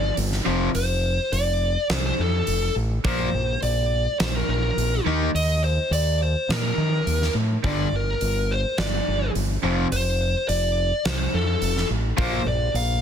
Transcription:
0.00 0.10 G1 medium
0.00 0.15 D5 medium
0.17 0.39 G1 medium
0.17 open hi-hat medium
0.32 snare soft
0.46 0.68 F1 medium
0.46 0.69 F2 medium
0.46 0.69 C3 medium
0.46 0.69 F3 medium
0.75 1.18 F1 medium
0.75 1.33 C5 medium
0.75 open hi-hat medium
1.32 1.75 F1 medium
1.32 1.87 D5 loud
1.32 open hi-hat soft
1.90 2.12 C2 medium
1.90 2.04 C5 medium
1.90 snare medium
1.90 open hi-hat soft
2.06 2.20 C5 medium
2.19 2.41 F2 medium
2.19 2.74 A4 medium
2.47 2.69 F1 medium
2.47 open hi-hat soft
2.76 2.98 A1 medium
3.04 3.26 A#1 medium
3.04 3.28 A#2 medium
3.04 3.28 F3 medium
3.04 3.29 A#3 medium
3.04 3.59 C5 medium
3.04 kick loud
3.04 open hi-hat medium
3.34 3.56 A#1 medium
3.62 4.06 A#1 medium
3.62 4.19 D5 loud
3.62 open hi-hat soft
4.19 4.42 A#1 medium
4.19 4.33 C5 medium
4.19 snare loud
4.19 open hi-hat soft
4.35 4.49 A#4 medium
4.48 4.70 A#1 medium
4.48 5.03 A#4 medium
4.77 4.99 A#1 medium
4.77 open hi-hat soft
5.06 5.28 D#2 medium
5.06 5.29 D#3 medium
5.06 5.29 A#3 medium
5.06 5.30 D#4 medium
5.34 5.77 D#2 medium
5.34 5.62 D#5 medium
5.34 open hi-hat medium
5.64 5.90 C5 medium
5.91 6.34 D#2 medium
5.91 6.19 D5 medium
5.91 open hi-hat medium
6.22 6.51 C5 medium
6.49 6.71 A#2 medium
6.49 7.32 A#4 medium
6.49 snare medium
6.49 open hi-hat soft
6.78 6.99 D#3 medium
7.07 7.28 D#2 medium
7.07 open hi-hat soft
7.22 snare soft
7.35 7.56 A2 medium
7.64 7.85 G1 medium
7.64 7.87 G2 medium
7.64 7.87 D3 medium
7.64 7.87 G3 medium
7.64 7.94 D5 medium
7.64 kick loud
7.64 open hi-hat soft
7.93 8.14 G1 medium
7.93 8.53 A#4 medium
8.21 8.64 G1 medium
8.21 open hi-hat soft
8.51 8.78 C5 medium
8.78 9.00 G1 medium
8.78 9.31 D5 medium
8.78 snare loud
8.78 open hi-hat soft
9.08 9.29 G1 medium
9.35 9.56 G1 medium
9.35 open hi-hat soft
9.63 9.84 F1 medium
9.63 9.86 F2 medium
9.63 9.86 C3 loud
9.63 9.86 F3 medium
9.92 10.34 F1 medium
9.92 10.48 C5 medium
9.92 open hi-hat medium
10.48 10.91 F1 medium
10.48 11.06 D5 loud
10.48 open hi-hat soft
11.05 11.26 C2 medium
11.05 11.18 C5 medium
11.05 snare medium
11.05 open hi-hat soft
11.19 11.34 C5 medium
11.34 11.55 F2 medium
11.34 11.87 A4 medium
11.62 11.83 F1 medium
11.62 open hi-hat medium
11.77 snare soft
11.90 12.11 A1 medium
12.17 12.39 A#1 medium
12.17 12.41 A#2 medium
12.17 12.41 F3 medium
12.17 12.41 A#3 loud
12.17 12.47 C5 medium
12.17 kick loud
12.17 open hi-hat medium
12.46 12.67 A#1 medium
12.46 12.74 D5 medium
12.74 13.02 A#1 medium
12.74 13.02 F5 loud
12.74 open hi-hat soft

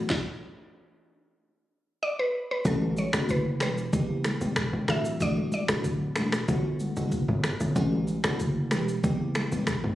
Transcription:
0.10 kick loud
0.10 snare medium
2.03 2.19 D5 medium
2.19 2.48 B4 medium
2.51 2.66 B4 medium
2.65 3.06 A1 loud
2.65 2.84 E3 medium
2.65 2.84 A3 medium
2.65 2.84 C#4 medium
2.65 2.84 F#4 loud
2.65 2.99 A4 medium
2.65 kick loud
2.65 low conga medium
2.65 shaker medium
2.82 high conga medium
2.96 3.31 C#5 medium
2.96 high conga medium
2.96 shaker medium
3.13 3.62 F#1 medium
3.13 3.31 E3 medium
3.13 3.32 A3 medium
3.13 3.32 C#4 medium
3.13 3.32 F#4 medium
3.13 finger snap medium
3.13 cross-stick loud
3.13 shaker medium
3.29 3.61 B4 medium
3.29 kick medium
3.29 low conga medium
3.29 shaker medium
3.60 3.88 E1 loud
3.60 3.80 E3 medium
3.60 3.80 G3 medium
3.60 3.80 B3 medium
3.60 3.80 G4 medium
3.60 4.93 B4 medium
3.60 finger snap medium
3.60 cross-stick medium
3.60 high conga medium
3.60 shaker medium
3.78 shaker medium
3.93 4.34 F#1 medium
3.93 4.12 E3 medium
3.93 4.12 G3 medium
3.93 4.12 B3 medium
3.93 4.12 G4 loud
3.93 kick loud
3.93 shaker medium
4.24 finger snap medium
4.24 cross-stick medium
4.24 high conga medium
4.24 shaker medium
4.41 4.68 E1 medium
4.41 4.85 E3 medium
4.41 4.85 G3 medium
4.41 4.85 B3 medium
4.41 4.85 G4 medium
4.41 high conga medium
4.41 shaker medium
4.56 finger snap medium
4.56 kick loud
4.56 cross-stick medium
4.56 shaker medium
4.73 4.86 E1 medium
4.88 5.43 D1 loud
4.88 5.18 E3 medium
4.88 5.18 A3 medium
4.88 5.18 D4 medium
4.88 5.18 F#4 medium
4.88 5.22 E5 loud
4.88 finger snap medium
4.88 cross-stick medium
4.88 low conga medium
4.88 shaker medium
5.05 shaker medium
5.20 5.39 E3 medium
5.20 5.40 A3 medium
5.20 5.40 D4 medium
5.20 5.40 F#4 loud
5.20 5.51 D5 loud
5.20 kick loud
5.20 low conga medium
5.20 shaker medium
5.37 high conga medium
5.52 6.77 D5 loud
5.52 high conga medium
5.52 shaker medium
5.68 6.18 D1 medium
5.68 5.87 E3 medium
5.68 5.87 A3 medium
5.68 5.87 D4 medium
5.68 5.87 F#4 medium
5.68 finger snap medium
5.68 cross-stick loud
5.68 shaker medium
5.84 kick medium
5.84 low conga medium
5.84 shaker medium
6.16 6.43 E1 medium
6.16 6.35 E3 medium
6.16 6.35 A3 medium
6.16 6.35 D4 medium
6.16 6.35 F#4 medium
6.16 finger snap medium
6.16 cross-stick medium
6.16 high conga medium
6.16 shaker medium
6.32 finger snap medium
6.32 cross-stick loud
6.32 shaker medium
6.48 6.90 G1 loud
6.48 6.67 D3 medium
6.48 6.67 G3 medium
6.48 6.67 B3 medium
6.48 6.67 F#4 loud
6.48 kick loud
6.48 shaker medium
6.80 high conga medium
6.80 shaker medium
6.96 7.24 F#1 medium
6.96 7.14 D3 medium
6.96 7.15 G3 medium
6.96 7.15 B3 medium
6.96 7.15 F#4 medium
6.96 high conga medium
6.96 shaker medium
7.12 kick medium
7.12 shaker medium
7.28 7.56 G1 loud
7.28 mid tom loud
7.44 finger snap medium
7.44 cross-stick medium
7.44 low conga medium
7.44 shaker medium
7.60 7.74 G1 medium
7.60 shaker medium
7.76 8.17 A1 loud
7.76 7.95 E3 medium
7.76 7.95 A3 medium
7.76 7.95 C#4 medium
7.76 7.95 F#4 loud
7.76 kick loud
7.76 low conga medium
7.76 shaker medium
7.92 high conga medium
8.07 high conga medium
8.07 shaker medium
8.24 8.73 F#1 medium
8.24 8.42 E3 medium
8.24 8.42 A3 medium
8.24 8.42 C#4 medium
8.24 8.42 F#4 medium
8.24 finger snap medium
8.24 cross-stick loud
8.24 shaker medium
8.39 kick medium
8.39 low conga medium
8.39 shaker medium
8.71 8.99 E1 loud
8.71 8.90 E3 medium
8.71 8.91 G3 medium
8.71 8.91 B3 medium
8.71 8.91 G4 medium
8.71 finger snap medium
8.71 cross-stick medium
8.71 high conga medium
8.71 shaker medium
8.88 shaker medium
9.03 9.45 F#1 medium
9.03 9.22 E3 medium
9.03 9.22 G3 medium
9.03 9.23 B3 medium
9.03 9.23 G4 loud
9.03 kick loud
9.03 shaker medium
9.35 finger snap medium
9.35 cross-stick medium
9.35 high conga medium
9.35 shaker medium
9.52 9.79 E1 medium
9.52 9.95 E3 medium
9.52 9.95 G3 medium
9.52 9.95 B3 medium
9.52 9.95 G4 medium
9.52 high conga medium
9.52 shaker medium
9.67 finger snap medium
9.67 kick loud
9.67 cross-stick medium
9.67 shaker medium
9.84 9.95 E1 medium
9.84 mid tom loud

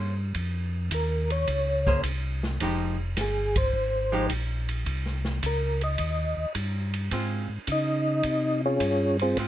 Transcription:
0.00 0.33 G2 medium
0.00 0.14 A#3 medium
0.00 0.14 C#4 medium
0.00 0.14 G#4 medium
0.00 0.14 C5 medium
0.35 0.90 F2 medium
0.35 kick soft
0.35 ride medium
0.91 1.46 D#2 medium
0.91 1.31 A#4 medium
0.91 kick soft
0.91 hi-hat pedal medium
0.91 ride medium
1.30 2.01 C#5 loud
1.30 ride soft
1.47 2.02 C#2 medium
1.47 kick soft
1.47 ride medium
1.87 2.02 A#3 medium
1.87 2.03 C#4 medium
1.87 2.03 G#4 medium
1.87 2.03 C5 medium
1.87 kick medium
2.03 2.59 C2 medium
2.03 kick soft
2.03 hi-hat pedal medium
2.03 ride medium
2.43 snare soft
2.60 3.15 F1 medium
2.60 2.96 F3 medium
2.60 2.96 G#3 medium
2.60 2.96 D#4 medium
2.60 2.97 G4 medium
2.60 kick soft
2.60 ride medium
3.17 3.72 G1 medium
3.17 kick soft
3.17 snare soft
3.17 hi-hat pedal medium
3.17 ride medium
3.21 3.57 G#4 medium
3.56 4.27 C5 loud
3.56 kick soft
3.56 ride medium
3.73 4.28 G#1 medium
3.73 kick soft
4.12 4.28 F3 medium
4.12 4.28 G#3 medium
4.12 4.28 D#4 medium
4.12 4.29 G4 medium
4.30 4.85 A#1 medium
4.30 kick soft
4.30 hi-hat pedal soft
4.30 ride medium
4.69 ride soft
4.86 5.41 C2 medium
4.86 kick soft
4.86 ride medium
5.06 snare soft
5.25 snare soft
5.43 5.98 C#2 medium
5.43 5.82 A#4 medium
5.43 kick soft
5.43 hi-hat pedal medium
5.43 ride medium
5.81 6.53 D#5 medium
5.81 ride soft
5.98 6.35 D#2 medium
5.98 kick soft
5.98 ride medium
6.37 6.46 D#2 soft
6.55 7.10 G2 medium
6.55 kick soft
6.55 hi-hat pedal medium
6.55 ride medium
6.94 ride soft
7.11 7.48 G#2 medium
7.11 7.47 G#3 medium
7.11 7.47 C4 medium
7.11 7.47 F4 medium
7.11 kick soft
7.11 ride medium
7.50 7.59 G#2 soft
7.67 8.23 C#3 medium
7.67 kick soft
7.67 hi-hat pedal medium
7.67 ride medium
7.72 8.61 D#4 medium
7.72 8.61 D#5 medium
8.23 8.79 C3 medium
8.23 kick soft
8.23 ride medium
8.66 9.17 C#4 medium
8.66 9.17 F4 medium
8.66 9.17 G#4 medium
8.66 9.17 C#5 medium
8.80 9.35 G2 medium
8.80 kick soft
8.80 hi-hat pedal soft
8.80 ride medium
9.19 9.38 C4 medium
9.19 9.38 F4 medium
9.19 9.38 G#4 medium
9.19 9.38 C5 loud
9.19 ride soft
9.37 9.48 G#2 medium
9.37 9.48 G#3 medium
9.37 9.48 C4 medium
9.37 9.48 F4 medium
9.37 kick soft
9.37 ride medium

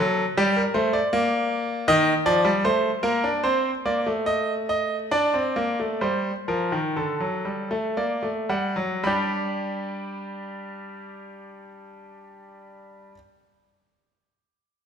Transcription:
0.00 0.23 F#3 loud
0.00 0.23 A4 medium
0.37 0.61 G3 loud
0.37 0.56 G4 medium
0.56 0.75 A#4 medium
0.74 0.98 A3 loud
0.74 0.93 C5 medium
0.93 1.85 D5 medium
1.13 1.86 A#3 loud
1.88 2.12 D#3 loud
1.88 2.12 D#5 loud
2.26 2.45 F3 loud
2.26 2.50 D5 loud
2.45 2.64 G3 loud
2.64 2.89 A3 loud
2.64 2.89 C5 loud
3.03 3.23 A#3 loud
3.03 3.28 A#4 loud
3.24 3.43 D4 medium
3.44 3.69 C4 medium
3.44 3.69 C5 loud
3.86 4.05 A#3 medium
3.86 4.11 D5 medium
4.06 5.09 A3 medium
4.26 4.52 D#5 loud
4.69 4.96 D#5 loud
5.11 5.33 D4 loud
5.11 5.98 D5 loud
5.34 5.55 C4 medium
5.56 5.78 A#3 loud
5.80 6.01 A3 medium
6.01 6.30 G3 medium
6.01 6.30 C5 medium
6.48 6.71 F3 medium
6.48 6.78 A#4 medium
6.72 6.95 D#3 medium
6.96 7.19 D3 medium
6.96 7.93 A4 medium
7.20 7.44 F#3 medium
7.45 7.69 G3 medium
7.71 7.95 A3 medium
7.97 8.22 A#3 medium
7.97 8.29 D5 medium
8.23 8.48 A3 medium
8.49 8.75 G3 medium
8.49 8.83 F#5 medium
8.76 9.03 F#3 medium
9.03 13.11 G3 medium
9.03 13.14 D4 medium
9.03 13.14 G4 medium
9.03 13.11 B5 medium

